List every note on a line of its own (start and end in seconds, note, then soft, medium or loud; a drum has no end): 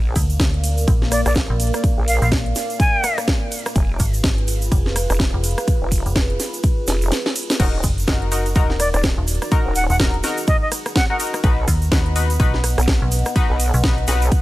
0.00 0.14 A#1 loud
0.00 3.72 A#3 medium
0.00 3.72 A#4 medium
0.00 3.72 D5 medium
0.00 3.72 F5 medium
0.16 0.38 D2 loud
0.16 kick medium
0.16 open hi-hat loud
0.16 ride medium
0.16 shaker medium
0.30 closed hi-hat medium
0.30 shaker medium
0.40 0.86 D2 loud
0.40 kick loud
0.40 snare loud
0.40 closed hi-hat medium
0.40 ride medium
0.40 shaker soft
0.54 closed hi-hat soft
0.64 open hi-hat medium
0.64 ride medium
0.64 shaker loud
0.78 closed hi-hat medium
0.78 shaker medium
0.88 1.24 A#1 loud
0.88 kick loud
0.88 closed hi-hat medium
0.88 ride medium
0.88 shaker soft
1.02 snare soft
1.12 1.21 D5 medium
1.12 cross-stick medium
1.12 open hi-hat loud
1.12 ride medium
1.12 shaker medium
1.26 1.48 A#1 loud
1.26 1.32 D5 medium
1.26 cross-stick medium
1.26 closed hi-hat soft
1.26 shaker medium
1.36 kick loud
1.36 snare loud
1.36 closed hi-hat soft
1.36 ride medium
1.50 1.72 A#1 loud
1.60 open hi-hat medium
1.60 ride medium
1.60 shaker medium
1.67 closed hi-hat medium
1.74 cross-stick medium
1.74 closed hi-hat medium
1.74 shaker soft
1.84 kick loud
1.84 closed hi-hat medium
1.84 ride medium
1.84 shaker soft
1.98 2.20 A#1 loud
2.08 2.17 F5 medium
2.08 open hi-hat loud
2.08 ride medium
2.08 shaker medium
2.22 2.54 A#1 loud
2.22 2.28 F5 medium
2.22 closed hi-hat medium
2.22 shaker medium
2.32 kick loud
2.32 snare loud
2.32 closed hi-hat medium
2.32 ride medium
2.46 closed hi-hat soft
2.55 snare soft
2.55 open hi-hat medium
2.55 ride medium
2.55 shaker medium
2.70 closed hi-hat medium
2.70 shaker medium
2.80 3.18 G#5 loud
2.80 kick loud
2.80 closed hi-hat medium
2.80 ride medium
2.80 shaker soft
3.04 cross-stick medium
3.04 open hi-hat loud
3.04 ride medium
3.04 shaker medium
3.18 cross-stick medium
3.18 closed hi-hat medium
3.18 shaker medium
3.28 kick loud
3.28 snare loud
3.28 closed hi-hat medium
3.28 ride medium
3.28 shaker soft
3.52 open hi-hat medium
3.52 ride medium
3.52 shaker medium
3.59 closed hi-hat medium
3.66 cross-stick medium
3.66 closed hi-hat medium
3.66 shaker medium
3.75 3.98 F1 loud
3.75 7.56 F4 medium
3.75 7.56 G#4 medium
3.75 7.56 B4 medium
3.75 kick loud
3.75 closed hi-hat medium
3.75 ride medium
3.75 shaker soft
3.99 4.22 G#1 loud
3.99 kick medium
3.99 open hi-hat loud
3.99 ride medium
3.99 shaker medium
4.14 closed hi-hat medium
4.14 shaker medium
4.24 4.70 G#1 medium
4.24 kick loud
4.24 snare loud
4.24 closed hi-hat medium
4.24 ride medium
4.24 shaker soft
4.38 closed hi-hat soft
4.48 open hi-hat medium
4.48 ride medium
4.48 shaker medium
4.62 closed hi-hat medium
4.62 shaker medium
4.72 5.08 F1 loud
4.72 kick loud
4.72 closed hi-hat medium
4.72 ride medium
4.72 shaker soft
4.86 snare soft
4.96 cross-stick medium
4.96 open hi-hat loud
4.96 ride medium
4.96 shaker medium
5.10 5.32 F1 loud
5.10 cross-stick medium
5.10 closed hi-hat medium
5.10 shaker soft
5.20 kick loud
5.20 snare loud
5.20 closed hi-hat medium
5.20 ride medium
5.20 shaker soft
5.34 5.56 F1 loud
5.44 open hi-hat medium
5.44 ride medium
5.44 shaker medium
5.51 closed hi-hat medium
5.58 cross-stick medium
5.58 closed hi-hat medium
5.58 shaker soft
5.68 kick loud
5.68 closed hi-hat medium
5.68 ride medium
5.68 shaker soft
5.82 6.04 F1 medium
5.92 kick medium
5.92 open hi-hat loud
5.92 ride medium
5.92 shaker medium
6.06 6.38 F1 loud
6.06 closed hi-hat medium
6.06 shaker medium
6.16 kick loud
6.16 snare loud
6.16 closed hi-hat medium
6.16 ride medium
6.16 shaker soft
6.30 closed hi-hat soft
6.40 snare soft
6.40 open hi-hat medium
6.40 ride medium
6.40 shaker medium
6.54 closed hi-hat medium
6.54 shaker medium
6.63 kick loud
6.63 closed hi-hat medium
6.63 ride medium
6.63 shaker soft
6.87 7.12 F1 loud
6.87 snare medium
6.87 open hi-hat loud
6.87 ride medium
6.87 shaker medium
7.01 closed hi-hat medium
7.01 shaker medium
7.12 snare medium
7.12 closed hi-hat medium
7.12 ride medium
7.12 shaker soft
7.26 snare medium
7.36 open hi-hat medium
7.36 ride medium
7.36 shaker medium
7.43 closed hi-hat medium
7.50 snare medium
7.50 closed hi-hat medium
7.50 shaker medium
7.60 7.82 D#1 loud
7.60 11.40 D#4 medium
7.60 7.75 D#4 medium
7.60 11.40 F#4 medium
7.60 7.75 F#4 medium
7.60 9.50 A#4 medium
7.60 7.75 A#4 loud
7.60 kick loud
7.60 closed hi-hat medium
7.60 crash medium
7.60 ride medium
7.60 shaker soft
7.83 8.06 F#1 loud
7.83 kick medium
7.83 open hi-hat loud
7.83 ride medium
7.83 shaker medium
7.98 closed hi-hat medium
7.98 shaker medium
8.08 8.54 F#1 loud
8.08 8.29 D#4 medium
8.08 8.29 F#4 medium
8.08 8.29 A#4 medium
8.08 kick loud
8.08 snare loud
8.08 closed hi-hat medium
8.08 ride medium
8.22 closed hi-hat soft
8.32 8.47 D#4 medium
8.32 8.47 F#4 medium
8.32 8.47 A#4 medium
8.32 open hi-hat medium
8.32 ride medium
8.32 shaker medium
8.46 closed hi-hat medium
8.46 shaker medium
8.55 8.92 D#1 loud
8.55 8.71 D#4 loud
8.55 8.71 F#4 medium
8.55 8.71 A#4 loud
8.55 kick loud
8.55 closed hi-hat medium
8.55 ride medium
8.55 shaker soft
8.70 snare soft
8.80 8.89 D5 medium
8.80 cross-stick medium
8.80 open hi-hat loud
8.80 ride medium
8.80 shaker medium
8.94 9.16 D#1 loud
8.94 9.00 D5 medium
8.94 cross-stick medium
8.94 closed hi-hat medium
8.94 shaker medium
9.04 kick loud
9.04 snare loud
9.04 closed hi-hat medium
9.04 ride medium
9.18 9.40 D#1 loud
9.28 open hi-hat loud
9.28 ride medium
9.28 shaker medium
9.35 closed hi-hat medium
9.42 cross-stick medium
9.42 closed hi-hat medium
9.42 shaker medium
9.51 9.73 D#4 loud
9.51 9.73 F#4 medium
9.51 11.42 G#4 medium
9.51 9.73 A#4 loud
9.51 kick loud
9.51 closed hi-hat medium
9.51 ride medium
9.51 shaker soft
9.66 9.88 D#1 loud
9.75 9.85 F#5 medium
9.75 open hi-hat loud
9.75 ride medium
9.75 shaker medium
9.90 10.22 D#1 loud
9.90 9.96 F#5 medium
9.90 closed hi-hat medium
9.90 shaker medium
9.99 10.15 D#4 medium
9.99 10.15 F#4 medium
9.99 10.15 A#4 medium
9.99 kick loud
9.99 snare loud
9.99 closed hi-hat medium
9.99 ride medium
9.99 shaker soft
10.14 closed hi-hat soft
10.23 10.39 D#4 medium
10.23 10.39 F#4 medium
10.23 10.39 A#4 loud
10.23 snare soft
10.23 open hi-hat loud
10.23 ride medium
10.23 shaker medium
10.37 closed hi-hat medium
10.37 shaker medium
10.47 10.57 D#5 medium
10.47 kick loud
10.47 closed hi-hat medium
10.47 ride medium
10.47 shaker soft
10.62 10.68 D#5 medium
10.72 cross-stick medium
10.72 open hi-hat loud
10.72 ride medium
10.72 shaker loud
10.86 cross-stick medium
10.86 closed hi-hat medium
10.86 shaker medium
10.96 11.05 F#5 medium
10.96 kick loud
10.96 snare loud
10.96 closed hi-hat medium
10.96 ride medium
10.96 shaker soft
11.10 11.18 D#4 medium
11.10 11.18 F#4 medium
11.10 11.18 A#4 medium
11.10 11.16 F#5 medium
11.20 11.41 D#4 medium
11.20 11.41 F#4 medium
11.20 11.41 A#4 medium
11.20 open hi-hat loud
11.20 ride medium
11.20 shaker medium
11.27 closed hi-hat medium
11.34 cross-stick medium
11.34 closed hi-hat medium
11.34 shaker medium
11.43 11.66 B1 loud
11.43 14.42 B3 medium
11.43 11.59 D#4 medium
11.43 11.59 F#4 medium
11.43 14.42 B4 medium
11.43 11.59 B4 loud
11.43 14.42 D#5 medium
11.43 14.42 F#5 medium
11.43 kick loud
11.43 closed hi-hat medium
11.43 ride medium
11.43 shaker soft
11.68 11.90 D#2 loud
11.68 kick medium
11.68 open hi-hat loud
11.68 ride medium
11.68 shaker loud
11.82 closed hi-hat medium
11.82 shaker medium
11.92 12.38 D#2 loud
11.92 12.13 D#4 medium
11.92 12.13 F#4 medium
11.92 12.13 B4 medium
11.92 kick loud
11.92 snare loud
11.92 closed hi-hat medium
11.92 ride medium
11.92 shaker soft
12.06 closed hi-hat soft
12.16 12.31 D#4 medium
12.16 12.31 F#4 medium
12.16 12.31 B4 medium
12.16 open hi-hat loud
12.16 ride medium
12.16 shaker loud
12.30 closed hi-hat medium
12.30 shaker medium
12.40 12.76 B1 loud
12.40 12.55 D#4 loud
12.40 12.55 F#4 medium
12.40 12.55 B4 loud
12.40 kick loud
12.40 closed hi-hat medium
12.40 ride medium
12.54 snare soft
12.64 cross-stick medium
12.64 open hi-hat loud
12.64 ride medium
12.64 shaker loud
12.78 13.00 B1 loud
12.78 cross-stick medium
12.78 closed hi-hat medium
12.78 shaker medium
12.88 kick loud
12.88 snare loud
12.88 closed hi-hat medium
12.88 ride medium
13.02 13.24 B1 loud
13.12 open hi-hat loud
13.12 ride medium
13.12 shaker medium
13.19 closed hi-hat medium
13.25 cross-stick medium
13.25 closed hi-hat medium
13.25 shaker medium
13.36 13.58 D#4 loud
13.36 13.58 F#4 medium
13.36 13.58 B4 loud
13.36 kick loud
13.36 closed hi-hat medium
13.36 ride medium
13.36 shaker soft
13.50 13.72 B1 loud
13.60 open hi-hat loud
13.60 ride medium
13.60 shaker loud
13.74 14.06 B1 loud
13.74 closed hi-hat medium
13.74 shaker medium
13.84 13.99 D#4 medium
13.84 13.99 F#4 medium
13.84 13.99 B4 medium
13.84 kick loud
13.84 snare loud
13.84 closed hi-hat medium
13.84 ride medium
13.98 closed hi-hat soft
14.07 14.30 B1 loud
14.07 14.23 D#4 medium
14.07 14.23 F#4 medium
14.07 14.23 B4 loud
14.07 snare soft
14.07 open hi-hat loud
14.07 ride medium
14.07 shaker loud
14.22 closed hi-hat medium
14.22 shaker medium
14.32 kick loud
14.32 closed hi-hat medium
14.32 ride medium
14.32 shaker soft